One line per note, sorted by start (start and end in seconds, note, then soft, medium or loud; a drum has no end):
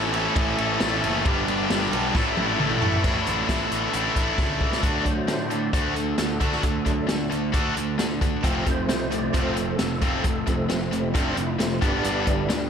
0.00 0.27 A1 medium
0.00 0.11 A2 loud
0.00 0.80 A2 loud
0.00 0.12 E3 loud
0.00 0.79 E3 loud
0.00 0.11 A3 loud
0.00 0.59 A3 loud
0.00 0.58 C#4 loud
0.00 1.23 E4 medium
0.00 0.57 A4 loud
0.00 1.23 A4 medium
0.00 1.23 C#5 medium
0.12 1.24 A2 medium
0.12 1.24 E3 medium
0.12 1.23 A3 medium
0.12 ride medium
0.36 0.54 A1 medium
0.36 kick loud
0.36 ride loud
0.58 0.76 A1 medium
0.58 0.80 A3 medium
0.58 0.80 C#4 medium
0.58 0.81 A4 medium
0.58 ride medium
0.80 0.99 A1 loud
0.80 1.23 E3 medium
0.80 1.03 A3 medium
0.80 1.02 C#4 medium
0.80 1.01 A4 medium
0.80 snare loud
0.80 ride medium
1.02 1.21 F#1 loud
1.02 1.24 A3 medium
1.02 1.24 C#4 medium
1.02 1.23 A4 medium
1.02 ride medium
1.24 1.43 G1 loud
1.24 1.90 G2 loud
1.24 1.68 G2 loud
1.24 1.69 D3 loud
1.24 1.91 D3 loud
1.24 1.69 G3 medium
1.24 1.90 G3 loud
1.24 1.70 B3 loud
1.24 1.70 D4 loud
1.24 2.14 G4 medium
1.24 1.70 G4 loud
1.24 2.14 B4 medium
1.24 2.13 D5 medium
1.24 kick loud
1.24 ride medium
1.48 1.65 G1 loud
1.48 ride medium
1.69 1.88 G1 medium
1.69 2.13 G2 loud
1.69 2.13 D3 loud
1.69 2.13 G3 loud
1.69 2.13 B3 loud
1.69 2.13 D4 loud
1.69 2.14 G4 loud
1.69 snare loud
1.69 ride medium
1.82 snare soft
1.92 2.10 B1 medium
1.92 2.14 G2 medium
1.92 2.14 D3 medium
1.92 2.13 G3 medium
1.92 ride medium
2.14 2.32 A1 medium
2.14 2.80 A2 medium
2.14 2.59 A2 medium
2.14 2.57 D3 medium
2.14 2.81 E3 medium
2.14 2.37 A3 loud
2.14 2.80 A3 loud
2.14 2.36 E4 loud
2.14 3.04 E4 medium
2.14 2.35 A4 loud
2.14 3.04 A4 medium
2.14 3.04 D5 medium
2.14 kick loud
2.14 snare medium
2.36 2.55 A1 medium
2.36 2.58 A3 medium
2.36 2.59 E4 medium
2.36 2.59 A4 medium
2.36 high tom medium
2.59 2.77 A1 medium
2.59 3.02 D3 medium
2.59 2.82 A3 medium
2.59 2.81 E4 medium
2.59 2.80 A4 medium
2.59 mid tom medium
2.71 mid tom medium
2.81 2.99 A1 medium
2.81 3.03 A2 medium
2.81 3.03 E3 medium
2.81 3.02 A3 medium
2.81 3.03 A3 medium
2.81 3.03 E4 medium
2.81 3.02 A4 medium
2.81 floor tom loud
2.94 floor tom medium
3.03 3.19 A1 medium
3.03 3.92 A2 medium
3.03 4.16 A2 medium
3.03 3.92 D3 medium
3.03 3.92 A3 medium
3.03 3.93 D4 loud
3.03 3.93 E4 loud
3.03 kick loud
3.03 crash loud
3.26 3.42 A1 medium
3.26 3.48 D3 medium
3.26 closed hi-hat medium
3.49 3.64 A1 medium
3.49 4.61 D3 medium
3.49 kick medium
3.49 snare loud
3.49 closed hi-hat medium
3.71 3.86 A1 medium
3.71 4.60 E3 medium
3.71 closed hi-hat medium
3.93 4.09 A1 medium
3.93 4.82 A2 medium
3.93 4.81 D3 medium
3.93 4.38 A3 medium
3.93 4.83 A3 medium
3.93 4.82 D4 medium
3.93 4.83 E4 medium
3.93 closed hi-hat medium
4.16 4.31 A1 medium
4.16 4.83 E4 medium
4.16 kick medium
4.16 closed hi-hat medium
4.38 4.68 C#2 medium
4.38 4.83 A3 medium
4.38 kick loud
4.38 snare medium
4.50 mid tom medium
4.61 4.84 E3 medium
4.61 kick medium
4.72 snare medium
4.82 5.03 D2 medium
4.82 5.04 D3 medium
4.82 5.47 F#3 medium
4.82 5.47 A3 soft
4.82 5.05 A3 medium
4.82 5.47 D4 medium
4.82 5.04 D4 medium
4.82 5.05 D4 loud
4.82 5.05 F#4 medium
4.82 kick loud
4.82 closed hi-hat medium
5.05 5.25 D2 medium
5.05 5.26 D3 medium
5.05 5.26 A3 medium
5.05 5.26 D4 medium
5.05 5.50 C5 loud
5.05 kick medium
5.05 closed hi-hat medium
5.27 5.67 A2 medium
5.27 5.48 D3 medium
5.27 5.49 A3 medium
5.27 5.48 D4 medium
5.27 snare loud
5.27 closed hi-hat medium
5.50 5.71 D3 medium
5.50 5.71 A3 medium
5.50 5.71 D4 medium
5.50 5.72 D5 medium
5.50 closed hi-hat medium
5.73 6.12 D2 medium
5.73 5.94 D3 medium
5.73 5.93 D3 medium
5.73 5.94 A3 medium
5.73 5.94 D4 medium
5.73 5.95 D4 medium
5.73 5.95 F#4 medium
5.73 5.95 C5 medium
5.73 kick loud
5.73 closed hi-hat loud
5.94 6.15 D3 medium
5.94 6.16 D3 medium
5.94 6.16 A3 medium
5.94 6.16 D4 medium
5.94 6.18 A4 medium
5.94 closed hi-hat medium
6.15 6.38 D2 medium
6.15 6.38 D3 medium
6.15 6.39 D3 medium
6.15 6.39 A3 medium
6.15 6.39 D4 medium
6.15 6.18 G#4 medium
6.15 snare loud
6.15 closed hi-hat medium
6.19 7.06 A4 medium
6.40 6.60 D2 medium
6.40 6.62 D3 loud
6.40 6.62 D3 medium
6.40 6.62 A3 loud
6.40 6.62 D4 loud
6.40 6.63 D4 loud
6.40 6.62 F#4 loud
6.40 kick medium
6.40 closed hi-hat medium
6.52 snare soft
6.63 6.83 D2 medium
6.63 6.83 D3 medium
6.63 6.84 D3 medium
6.63 6.84 A3 loud
6.63 6.84 D4 medium
6.63 kick medium
6.63 closed hi-hat medium
6.85 7.06 D2 medium
6.85 7.06 D3 medium
6.85 7.16 F#3 medium
6.85 7.06 A3 medium
6.85 7.17 A3 medium
6.85 7.06 D4 medium
6.85 7.17 D4 medium
6.85 kick medium
6.85 closed hi-hat medium
7.07 7.28 D2 medium
7.07 7.28 D3 medium
7.07 7.29 D3 medium
7.07 7.29 A3 medium
7.07 7.28 D4 loud
7.07 snare loud
7.07 closed hi-hat medium
7.30 7.51 D2 medium
7.30 7.51 D3 medium
7.30 7.52 A3 medium
7.30 7.51 D4 medium
7.30 closed hi-hat medium
7.52 7.73 D2 loud
7.52 7.74 D3 medium
7.52 7.75 D3 medium
7.52 7.75 A3 medium
7.52 7.74 D4 medium
7.52 7.75 D4 loud
7.52 7.74 F#4 loud
7.52 kick loud
7.52 closed hi-hat medium
7.75 7.96 D2 medium
7.75 7.96 D3 medium
7.75 7.97 A3 medium
7.75 7.96 D4 medium
7.75 closed hi-hat medium
7.98 8.38 D2 medium
7.98 8.19 D3 medium
7.98 8.19 A3 medium
7.98 8.19 D4 medium
7.98 snare loud
7.98 closed hi-hat medium
8.21 8.42 D3 medium
8.21 8.42 A3 medium
8.21 8.42 D4 medium
8.21 kick medium
8.21 closed hi-hat medium
8.43 8.63 F1 loud
8.43 8.65 F2 medium
8.43 8.65 C3 loud
8.43 8.65 F3 medium
8.43 9.54 F3 medium
8.43 8.65 F3 loud
8.43 8.65 A3 medium
8.43 9.55 A3 medium
8.43 8.65 C4 loud
8.43 9.55 C4 medium
8.43 kick loud
8.43 closed hi-hat medium
8.66 8.86 F1 medium
8.66 8.86 F2 medium
8.66 8.87 C3 medium
8.66 8.87 F3 medium
8.66 8.87 A3 medium
8.66 9.11 C5 loud
8.66 kick medium
8.66 closed hi-hat medium
8.88 9.28 C2 medium
8.88 9.09 F2 medium
8.88 9.09 C3 medium
8.88 9.09 F3 medium
8.88 9.09 A3 medium
8.88 snare loud
8.88 closed hi-hat medium
9.11 9.31 F2 medium
9.11 9.32 C3 medium
9.11 9.32 F3 medium
9.11 9.32 A3 medium
9.11 9.34 D5 medium
9.11 closed hi-hat medium
9.33 9.73 F1 medium
9.33 9.55 F2 medium
9.33 9.55 C3 medium
9.33 9.55 F3 medium
9.33 9.55 F3 loud
9.33 9.55 A3 medium
9.33 9.56 C4 medium
9.33 9.57 C5 loud
9.33 kick loud
9.33 closed hi-hat medium
9.55 9.77 F2 medium
9.55 9.77 C3 medium
9.55 9.76 F3 soft
9.55 9.77 F3 medium
9.55 9.77 A3 soft
9.55 9.77 A3 medium
9.55 9.77 C4 medium
9.55 9.79 A4 medium
9.55 closed hi-hat medium
9.76 9.99 F1 medium
9.76 9.99 F2 medium
9.76 10.00 C3 medium
9.76 9.99 F3 medium
9.76 10.00 A3 medium
9.76 9.79 G#4 medium
9.76 snare loud
9.76 closed hi-hat medium
9.81 10.67 A4 medium
10.01 10.21 F1 loud
10.01 10.23 F2 medium
10.01 10.23 C3 medium
10.01 10.23 F3 loud
10.01 10.23 A3 loud
10.01 10.24 C4 loud
10.01 kick loud
10.01 closed hi-hat medium
10.24 10.44 F1 medium
10.24 10.45 F2 medium
10.24 10.45 C3 medium
10.24 10.45 F3 medium
10.24 10.45 A3 medium
10.24 kick medium
10.24 closed hi-hat medium
10.46 10.67 F1 medium
10.46 10.67 F2 medium
10.46 10.67 C3 medium
10.46 10.67 F3 medium
10.46 11.12 F3 medium
10.46 10.67 A3 medium
10.46 11.12 A3 medium
10.46 11.13 C4 medium
10.46 kick medium
10.46 closed hi-hat medium
10.69 10.89 F1 medium
10.69 10.90 F2 medium
10.69 10.90 C3 medium
10.69 10.89 F3 medium
10.69 10.90 A3 medium
10.69 snare loud
10.69 closed hi-hat medium
10.91 11.12 F1 medium
10.91 11.12 F2 medium
10.91 11.12 C3 medium
10.91 11.12 F3 medium
10.91 11.12 A3 medium
10.91 closed hi-hat medium
11.14 11.34 F1 medium
11.14 11.35 F2 medium
11.14 11.36 C3 medium
11.14 11.36 F3 medium
11.14 11.36 A3 medium
11.14 11.36 C4 medium
11.14 11.37 D4 loud
11.14 kick loud
11.14 closed hi-hat medium
11.37 11.56 F1 medium
11.37 11.57 F2 medium
11.37 11.57 C3 medium
11.37 11.57 F3 medium
11.37 11.57 A3 medium
11.37 11.60 E4 medium
11.37 closed hi-hat medium
11.59 11.79 F1 medium
11.59 11.80 F2 medium
11.59 11.80 C3 medium
11.59 11.79 F3 medium
11.59 11.81 F3 soft
11.59 11.80 A3 medium
11.59 11.81 A3 soft
11.59 11.81 C4 medium
11.59 11.83 F4 medium
11.59 snare medium
11.59 closed hi-hat medium
11.80 12.02 G1 medium
11.80 12.03 G2 medium
11.80 12.03 D3 medium
11.80 12.03 G3 medium
11.80 12.04 G3 loud
11.80 12.70 G3 medium
11.80 12.03 B3 loud
11.80 12.70 B3 soft
11.80 12.03 D4 loud
11.80 12.49 D4 medium
11.80 11.83 F#4 medium
11.80 kick loud
11.80 closed hi-hat medium
11.85 12.27 G4 medium
12.04 12.24 G1 loud
12.04 12.26 G2 loud
12.04 12.26 D3 loud
12.04 12.25 G3 medium
12.04 12.26 G3 loud
12.04 12.26 B3 medium
12.04 12.26 D4 medium
12.04 closed hi-hat medium
12.27 12.47 G1 medium
12.27 12.48 G2 medium
12.27 12.48 D3 medium
12.27 12.47 G3 medium
12.27 12.47 D4 medium
12.27 12.49 E4 medium
12.27 kick medium
12.27 closed hi-hat medium
12.49 12.70 D2 medium
12.49 12.70 G2 medium
12.49 12.70 D3 medium
12.49 12.70 G3 medium
12.49 12.70 D4 medium
12.49 snare loud
12.49 closed hi-hat medium